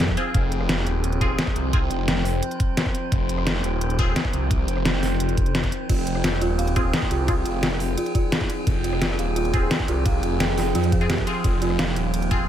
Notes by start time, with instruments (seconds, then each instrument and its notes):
Already playing: detuned saw bass F2, synth drone F3 C4 G#4 G5
0.09 kick, cross-stick
0.17 synth stab C4 F4 G#4, closed hi-hat
0.35 detuned saw bass F1, synth drone C5, kick, closed hi-hat
0.52 closed hi-hat
0.61 cross-stick
0.69 snare, closed hi-hat
0.87 detuned saw bass D#1, closed hi-hat
1.04 closed hi-hat
1.13 closed hi-hat
1.21 synth stab C4 F4 G#4, kick, closed hi-hat
1.39 snare, closed hi-hat
1.47 kick
1.56 detuned saw bass C2, closed hi-hat
1.73 synth stab C4 F4 G#4, kick, closed hi-hat
1.91 detuned saw bass F1, closed hi-hat
2.08 snare, closed hi-hat
2.25 open hi-hat
2.43 closed hi-hat
2.51 closed hi-hat
2.60 kick, closed hi-hat
2.77 snare, closed hi-hat
2.86 kick, cross-stick
2.95 closed hi-hat
3.12 detuned saw bass F1, kick, closed hi-hat
3.29 closed hi-hat
3.38 cross-stick
3.47 snare, closed hi-hat
3.64 detuned saw bass D#1, closed hi-hat
3.81 closed hi-hat
3.90 closed hi-hat
3.99 synth stab C4 F4 G#4, kick, closed hi-hat
4.16 snare, closed hi-hat
4.25 kick
4.33 detuned saw bass C2, closed hi-hat
4.51 kick, closed hi-hat
4.68 detuned saw bass F1, closed hi-hat
4.77 cross-stick
4.85 snare, closed hi-hat
5.03 snare, open hi-hat
5.20 detuned saw bass F1, closed hi-hat
5.29 closed hi-hat
5.37 kick, closed hi-hat
5.46 closed hi-hat
5.55 snare, closed hi-hat
5.63 kick, cross-stick, closed hi-hat
5.72 closed hi-hat
5.89 detuned saw bass F1, synth bell F4, synth drone G#4, kick, closed hi-hat, ride, crash
6.07 closed hi-hat, ride
6.15 cross-stick
6.24 synth bell F4, snare, closed hi-hat, ride
6.41 detuned saw bass D#1, synth bell F4, closed hi-hat, ride
6.59 synth bell F5, closed hi-hat, ride
6.67 closed hi-hat
6.76 synth stab C4 F4 G#4, synth bell F4, kick, closed hi-hat, ride
6.93 snare, closed hi-hat, ride
7.02 kick
7.11 detuned saw bass C2, synth bell F4, closed hi-hat, ride
7.28 synth stab C4 F4 G#4, synth bell F4, kick, closed hi-hat, ride
7.46 detuned saw bass F1, synth bell F5, closed hi-hat, ride
7.63 synth bell F4, snare, closed hi-hat, ride
7.80 open hi-hat, ride
7.98 synth bell F4, closed hi-hat, ride
8.06 closed hi-hat
8.15 synth bell F4, kick, closed hi-hat, ride
8.32 synth bell F5, snare, closed hi-hat, ride
8.41 kick, cross-stick
8.50 synth bell F4, closed hi-hat, ride
8.67 detuned saw bass F1, kick, closed hi-hat, ride
8.84 synth bell F4, closed hi-hat, ride
8.93 cross-stick
9.02 synth bell F4, snare, closed hi-hat, ride
9.19 detuned saw bass D#1, synth bell F5, closed hi-hat, ride
9.36 synth bell F4, closed hi-hat, ride
9.45 closed hi-hat
9.54 synth stab C4 F4 G#4, kick, closed hi-hat, ride
9.71 synth bell F4, snare, closed hi-hat, ride
9.80 kick
9.88 detuned saw bass C2, synth bell F4, closed hi-hat, ride
10.06 synth bell F5, kick, closed hi-hat, ride
10.23 detuned saw bass F1, synth bell F4, closed hi-hat, ride
10.40 snare, closed hi-hat, ride
10.58 synth bell F4, snare, open hi-hat, ride
10.75 detuned saw bass F2, synth bell F4, closed hi-hat, ride
10.84 closed hi-hat
10.92 synth bell G#4, kick, closed hi-hat, ride
11.01 synth stab C4 F4 G#4, closed hi-hat
11.10 synth bell G4, snare, closed hi-hat, ride
11.18 kick, cross-stick
11.27 synth stab C4 F4 G#4, closed hi-hat, ride
11.44 detuned saw bass F1, synth bell F4, synth drone C5, kick, closed hi-hat, ride
11.62 synth bell F4, closed hi-hat, ride
11.70 cross-stick
11.79 synth bell F5, snare, closed hi-hat, ride
11.96 detuned saw bass D#1, synth bell F4, closed hi-hat, ride
12.14 closed hi-hat, ride
12.22 closed hi-hat
12.31 synth stab C4 F4 G#4, synth bell F4, kick, closed hi-hat, ride